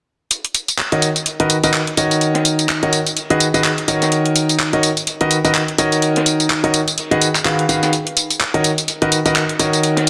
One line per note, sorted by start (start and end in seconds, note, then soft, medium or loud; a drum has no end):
0.31 closed hi-hat medium
0.31 tambourine soft
0.45 closed hi-hat soft
0.55 closed hi-hat medium
0.55 tambourine medium
0.68 closed hi-hat soft
0.68 tambourine soft
0.78 clap loud
0.78 closed hi-hat medium
0.78 tambourine soft
0.92 1.07 D#3 medium
0.92 1.07 F#4 medium
0.92 1.07 A#4 medium
0.92 1.07 C#5 medium
0.92 1.07 D#5 medium
0.92 closed hi-hat soft
1.01 closed hi-hat medium
1.01 tambourine medium
1.15 closed hi-hat soft
1.15 tambourine soft
1.26 closed hi-hat medium
1.26 tambourine soft
1.40 1.55 D#3 medium
1.40 1.55 F#4 medium
1.40 1.55 A#4 medium
1.40 1.55 B4 medium
1.40 1.55 D#5 medium
1.40 closed hi-hat soft
1.50 closed hi-hat medium
1.50 tambourine medium
1.64 1.79 D#3 medium
1.64 1.79 F#4 medium
1.64 1.79 A#4 medium
1.64 1.79 B4 medium
1.64 1.79 D#5 medium
1.64 closed hi-hat soft
1.64 tambourine soft
1.74 clap loud
1.74 closed hi-hat medium
1.74 tambourine soft
1.87 closed hi-hat soft
1.97 2.79 D#3 medium
1.97 2.79 F#4 medium
1.97 2.79 A#4 medium
1.97 2.79 C#5 medium
1.97 2.79 D#5 medium
1.97 closed hi-hat medium
1.97 tambourine medium
2.11 closed hi-hat soft
2.11 tambourine soft
2.21 closed hi-hat medium
2.21 tambourine soft
2.35 snare soft
2.35 closed hi-hat soft
2.45 closed hi-hat medium
2.45 tambourine medium
2.59 closed hi-hat soft
2.59 tambourine soft
2.69 clap loud
2.69 closed hi-hat medium
2.69 tambourine soft
2.83 2.98 D#3 medium
2.83 2.98 F#4 medium
2.83 2.98 A#4 medium
2.83 2.98 C#5 medium
2.83 2.98 D#5 medium
2.83 closed hi-hat soft
2.93 closed hi-hat medium
2.93 tambourine medium
3.06 closed hi-hat soft
3.06 tambourine soft
3.16 closed hi-hat medium
3.16 open hi-hat medium
3.16 tambourine soft
3.30 3.46 D#3 medium
3.30 3.46 F#4 medium
3.30 3.46 G#4 medium
3.30 3.46 B4 medium
3.30 3.46 D#5 medium
3.30 closed hi-hat soft
3.40 closed hi-hat medium
3.40 tambourine medium
3.54 3.69 D#3 medium
3.54 3.69 F#4 medium
3.54 3.69 G#4 medium
3.54 3.69 B4 medium
3.54 3.69 D#5 medium
3.54 closed hi-hat soft
3.54 tambourine soft
3.64 clap loud
3.64 closed hi-hat medium
3.64 tambourine soft
3.78 closed hi-hat soft
3.88 4.70 D#3 medium
3.88 4.70 F#4 medium
3.88 4.70 A#4 medium
3.88 4.70 C#5 medium
3.88 4.70 D#5 medium
3.88 closed hi-hat medium
3.88 tambourine medium
4.02 snare soft
4.02 closed hi-hat soft
4.02 tambourine soft
4.11 closed hi-hat medium
4.11 tambourine soft
4.26 closed hi-hat soft
4.36 closed hi-hat medium
4.36 tambourine medium
4.49 closed hi-hat soft
4.49 tambourine soft
4.59 clap loud
4.59 closed hi-hat medium
4.59 tambourine soft
4.73 4.88 D#3 medium
4.73 4.88 F#4 medium
4.73 4.88 A#4 medium
4.73 4.88 C#5 medium
4.73 4.88 D#5 medium
4.73 closed hi-hat soft
4.83 closed hi-hat medium
4.83 tambourine medium
4.97 closed hi-hat soft
4.97 tambourine soft
5.07 closed hi-hat medium
5.07 tambourine soft
5.21 5.36 D#3 medium
5.21 5.36 F#4 medium
5.21 5.36 A#4 medium
5.21 5.36 B4 medium
5.21 5.36 D#5 medium
5.21 closed hi-hat soft
5.31 closed hi-hat medium
5.31 tambourine medium
5.45 5.60 D#3 medium
5.45 5.60 F#4 medium
5.45 5.60 A#4 medium
5.45 5.60 B4 medium
5.45 5.60 D#5 medium
5.45 closed hi-hat soft
5.45 tambourine soft
5.55 clap loud
5.55 closed hi-hat medium
5.55 tambourine soft
5.68 closed hi-hat soft
5.78 6.60 D#3 medium
5.78 6.60 F#4 medium
5.78 6.60 A#4 medium
5.78 6.60 C#5 medium
5.78 6.60 D#5 medium
5.78 closed hi-hat medium
5.78 tambourine medium
5.92 closed hi-hat soft
5.92 tambourine soft
6.02 closed hi-hat medium
6.02 tambourine soft
6.16 snare soft
6.16 closed hi-hat soft
6.26 closed hi-hat medium
6.26 tambourine medium
6.40 closed hi-hat soft
6.40 tambourine soft
6.50 clap loud
6.50 closed hi-hat medium
6.50 tambourine soft
6.64 6.79 D#3 medium
6.64 6.79 F#4 medium
6.64 6.79 A#4 medium
6.64 6.79 C#5 medium
6.64 6.79 D#5 medium
6.64 closed hi-hat soft
6.73 closed hi-hat medium
6.73 tambourine medium
6.88 closed hi-hat soft
6.88 tambourine soft
6.98 closed hi-hat medium
6.98 open hi-hat medium
6.98 tambourine soft
7.11 7.26 D#3 medium
7.11 7.26 F#4 medium
7.11 7.26 G#4 medium
7.11 7.26 B4 medium
7.11 7.26 D#5 medium
7.11 closed hi-hat soft
7.22 closed hi-hat medium
7.22 tambourine medium
7.35 clap soft
7.35 closed hi-hat soft
7.35 tambourine soft
7.45 7.63 D#3 medium
7.45 7.63 F#4 medium
7.45 7.63 G#4 medium
7.45 7.63 B4 medium
7.45 7.63 F5 medium
7.45 clap loud
7.45 closed hi-hat medium
7.45 tambourine soft
7.59 closed hi-hat soft
7.68 7.92 D#3 medium
7.68 7.92 F#4 medium
7.68 7.92 G#4 medium
7.68 7.92 B4 medium
7.68 7.92 F5 medium
7.68 closed hi-hat medium
7.68 tambourine medium
7.83 snare soft
7.83 closed hi-hat soft
7.83 tambourine soft
7.93 closed hi-hat medium
7.93 tambourine soft
8.07 closed hi-hat soft
8.17 closed hi-hat medium
8.17 tambourine medium
8.30 closed hi-hat soft
8.30 tambourine soft
8.40 clap loud
8.40 closed hi-hat medium
8.40 tambourine soft
8.54 8.69 D#3 medium
8.54 8.69 F#4 medium
8.54 8.69 A#4 medium
8.54 8.69 C#5 medium
8.54 8.69 D#5 medium
8.54 closed hi-hat soft
8.64 closed hi-hat medium
8.64 tambourine medium
8.78 closed hi-hat soft
8.78 tambourine soft
8.88 closed hi-hat medium
8.88 tambourine soft
9.02 9.17 D#3 medium
9.02 9.17 F#4 medium
9.02 9.17 A#4 medium
9.02 9.17 B4 medium
9.02 9.17 D#5 medium
9.02 closed hi-hat soft
9.12 closed hi-hat medium
9.12 tambourine medium
9.25 9.41 D#3 medium
9.25 9.41 F#4 medium
9.25 9.41 A#4 medium
9.25 9.41 B4 medium
9.25 9.41 D#5 medium
9.25 closed hi-hat soft
9.25 tambourine soft
9.36 clap loud
9.36 closed hi-hat medium
9.36 tambourine soft
9.49 closed hi-hat soft
9.59 10.10 D#3 medium
9.59 10.10 F#4 medium
9.59 10.10 A#4 medium
9.59 10.10 C#5 medium
9.59 10.10 D#5 medium
9.59 closed hi-hat medium
9.59 tambourine medium
9.73 closed hi-hat soft
9.73 tambourine soft
9.83 closed hi-hat medium
9.83 tambourine soft
9.97 snare soft
9.97 closed hi-hat soft